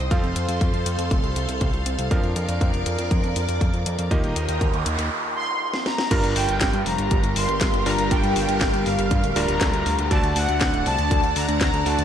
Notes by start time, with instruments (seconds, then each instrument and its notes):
Already playing: string machine C5
0.11 analog synth bass F2, electric grand piano F3 C4 F4 A4 F5, string machine A4 F5 C6, kick, closed hi-hat
0.23 analog synth bass F1, closed hi-hat
0.36 analog synth bass F2, closed hi-hat
0.48 analog synth bass F2, closed hi-hat
0.61 analog synth bass F2, kick, closed hi-hat
0.73 analog synth bass F2, closed hi-hat
0.86 analog synth bass F2, closed hi-hat
0.98 analog synth bass F2, closed hi-hat
1.11 analog synth bass F1, kick, closed hi-hat
1.24 analog synth bass C2, closed hi-hat
1.36 analog synth bass C2, closed hi-hat
1.49 analog synth bass C2, closed hi-hat
1.61 analog synth bass C2, kick, closed hi-hat
1.73 analog synth bass C2, closed hi-hat
1.86 analog synth bass C2, closed hi-hat
1.99 analog synth bass C2, closed hi-hat
2.11 analog synth bass F2, electric grand piano F3 D4 F4 A#4 F5, string machine A#4 D5 D6, kick, closed hi-hat
2.23 analog synth bass F2, closed hi-hat
2.36 analog synth bass F2, closed hi-hat
2.48 analog synth bass F2, closed hi-hat
2.61 analog synth bass F2, kick, closed hi-hat
2.74 analog synth bass F1, closed hi-hat
2.86 analog synth bass F2, closed hi-hat
2.99 analog synth bass F2, closed hi-hat
3.11 analog synth bass F2, kick, closed hi-hat
3.24 analog synth bass F2, closed hi-hat
3.36 analog synth bass F2, closed hi-hat
3.49 analog synth bass F2, closed hi-hat
3.61 analog synth bass F2, kick, closed hi-hat
3.74 analog synth bass F2, closed hi-hat
3.86 analog synth bass F2, closed hi-hat
3.99 analog synth bass F2, closed hi-hat
4.11 analog synth bass D#2, electric grand piano D#3 A#3 F4 G4 D#5, string machine A#4 G5 D#6, kick, closed hi-hat, noise sweep
4.24 analog synth bass D#1, closed hi-hat
4.36 analog synth bass D#2, closed hi-hat
4.49 analog synth bass D#2, closed hi-hat
4.61 analog synth bass D#2, kick, closed hi-hat
4.74 analog synth bass D#2, closed hi-hat
4.86 analog synth bass D#2, closed hi-hat
4.98 analog synth bass D#2, closed hi-hat
5.36 analog polysynth C6
5.74 snare
5.86 analog polysynth A#5, snare
5.98 snare
6.11 analog synth bass G1, electric grand piano G2 G3 D4 F4 A#4, string machine G3 G4 A#4 F5, kick, closed hi-hat, crash
6.24 analog synth bass G1, closed hi-hat
6.36 analog synth bass G1, analog polysynth G5, open hi-hat
6.48 analog synth bass G1, closed hi-hat
6.61 analog synth bass G1, kick, snare, clap, closed hi-hat
6.73 analog synth bass G2, closed hi-hat
6.86 analog synth bass F1, analog polysynth A#5, open hi-hat
6.98 analog synth bass G1, closed hi-hat
7.11 analog synth bass G1, kick, closed hi-hat
7.24 analog synth bass G1, closed hi-hat
7.36 analog synth bass G1, analog polysynth C6, open hi-hat
7.49 analog synth bass G1, closed hi-hat
7.61 analog synth bass G1, kick, snare, clap, closed hi-hat
7.73 analog synth bass G1, closed hi-hat
7.86 analog synth bass G1, electric grand piano G2 G3 D4 F4 A#4, analog polysynth A#5, open hi-hat
7.99 analog synth bass G1, closed hi-hat
8.11 analog synth bass G1, electric grand piano G2 G3 D4 F4 A#4, analog polysynth G5, kick, closed hi-hat
8.24 analog synth bass G2, closed hi-hat
8.36 analog synth bass G1, analog polysynth G5, open hi-hat
8.49 analog synth bass G1, closed hi-hat
8.61 analog synth bass G1, kick, snare, clap, closed hi-hat
8.74 analog synth bass G1, closed hi-hat
8.86 analog synth bass G1, analog polysynth F5, open hi-hat
8.99 analog synth bass G1, closed hi-hat
9.11 analog synth bass G2, kick, closed hi-hat
9.24 analog synth bass D1, closed hi-hat
9.36 analog synth bass D1, electric grand piano G2 G3 D4 F4 A#4, analog polysynth A#5, open hi-hat
9.48 analog synth bass D1, closed hi-hat
9.61 analog synth bass D2, kick, snare, clap, closed hi-hat
9.73 analog synth bass D2, closed hi-hat
9.86 analog synth bass D2, open hi-hat
9.99 analog synth bass D2, closed hi-hat
10.11 analog synth bass D2, electric grand piano D3 A3 D4 F#4 D5, string machine D4 D5 F#5 A5, analog polysynth A5, kick, closed hi-hat
10.24 analog synth bass D2, closed hi-hat
10.36 analog synth bass D2, analog polysynth F#5, open hi-hat
10.49 analog synth bass D2, closed hi-hat
10.61 analog synth bass D2, kick, snare, clap, closed hi-hat
10.74 analog synth bass D1, closed hi-hat
10.86 analog synth bass C2, analog polysynth A5, open hi-hat
10.99 analog synth bass D2, closed hi-hat
11.11 analog synth bass D2, kick, closed hi-hat
11.24 analog synth bass D2, closed hi-hat
11.36 analog synth bass D2, analog polysynth A#5, open hi-hat
11.48 analog synth bass D2, closed hi-hat
11.61 analog synth bass D2, analog polysynth A#5, kick, snare, clap, closed hi-hat
11.73 analog synth bass D2, closed hi-hat
11.86 analog synth bass D2, electric grand piano D3 A3 D4 F#4 D5, analog polysynth A5, open hi-hat
11.98 analog synth bass D2, closed hi-hat